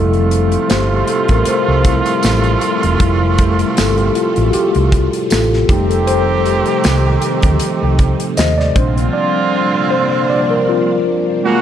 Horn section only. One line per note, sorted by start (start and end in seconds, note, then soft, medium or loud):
0.00 5.27 C3 medium
0.00 5.27 A3 medium
0.00 5.27 F4 medium
5.69 8.34 D#3 medium
5.69 8.34 C4 medium
5.69 8.34 G4 medium
8.76 11.02 D3 medium
8.76 11.02 C4 medium
8.76 11.03 F4 medium
11.45 11.62 C#3 medium
11.45 11.62 A#3 medium
11.45 11.62 F#4 medium